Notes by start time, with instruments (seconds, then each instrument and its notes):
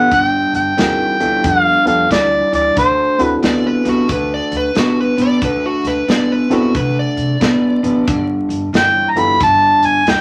Already playing: harmonica F#5
0.11 upright bass G1, clean electric guitar G2 D3, harmonica G5, kick, closed hi-hat
0.53 upright bass G1, harmonica G5, closed hi-hat
0.77 upright bass D2, clean electric guitar G2 E3, reed electric piano C4 D#4 F#4 G#4 A#4, snare, closed hi-hat
1.20 upright bass D2, clean electric guitar G2 E3, reed electric piano B3 D4 F4 G4 A4, closed hi-hat
1.44 upright bass F2, clean electric guitar G2 D3, harmonica F5, kick, closed hi-hat
1.86 upright bass F2, reed electric piano B3 D4 F4 G4 A4, harmonica F5, closed hi-hat
2.10 upright bass D2, clean electric guitar G2 E3, harmonica D5, kick, snare, closed hi-hat
2.52 upright bass D2, clean electric guitar G2 E3, harmonica D5, closed hi-hat
2.76 upright bass D2, clean electric guitar D3 A3, harmonica C5, kick, closed hi-hat
3.19 upright bass D2, reed electric piano C4 D4 E4 F#4 A4, harmonica B4, closed hi-hat
3.42 upright bass D2, clean electric guitar D3 B3, electric slide guitar D5, snare, closed hi-hat
3.67 electric slide guitar B4
3.85 upright bass D2, clean electric guitar D3 B3, electric slide guitar F#4, closed hi-hat
4.08 upright bass D2, clean electric guitar D3 A3, electric slide guitar B4, kick, closed hi-hat
4.34 electric slide guitar D5
4.52 upright bass D2, closed hi-hat
4.57 electric slide guitar B4
4.75 upright bass A2, clean electric guitar D3 B3, electric slide guitar F#4, snare, closed hi-hat
5.01 electric slide guitar B4
5.17 upright bass A2, clean electric guitar D3 B3, closed hi-hat
5.22 electric slide guitar D5
5.42 upright bass D2, clean electric guitar D3 A3, electric slide guitar B4, kick, closed hi-hat
5.66 electric slide guitar F#4
5.84 upright bass D2, electric slide guitar B4, snare, closed hi-hat
6.07 upright bass A2, clean electric guitar D3 B3, electric slide guitar D5, snare, closed hi-hat
6.32 electric slide guitar B4
6.50 upright bass A2, clean electric guitar D3 B3, reed electric piano C4 D4 E4 F#4 A4, electric slide guitar F#4, closed hi-hat
6.74 upright bass C3, clean electric guitar D3 A3, electric slide guitar B4, kick, closed hi-hat
6.99 electric slide guitar D5
7.17 upright bass C3, closed hi-hat
7.40 upright bass A2, clean electric guitar D3 B3, kick, snare, closed hi-hat
7.83 upright bass A1, clean electric guitar D3 B3, closed hi-hat
8.06 upright bass G1, clean electric guitar G2 D3, kick, closed hi-hat
8.49 upright bass G1, closed hi-hat
8.73 upright bass G1, clean electric guitar G2 E3, harmonica G5, snare, closed hi-hat
9.10 harmonica A#5
9.16 upright bass G1, clean electric guitar G2 E3, reed electric piano B3 D4 F4 G4 A4, harmonica B5, closed hi-hat
9.40 upright bass G1, clean electric guitar G2 D3, harmonica A5, kick, closed hi-hat
9.82 upright bass G1, harmonica G#5, closed hi-hat
10.06 upright bass D2, clean electric guitar G2 E3, harmonica G5, snare, closed hi-hat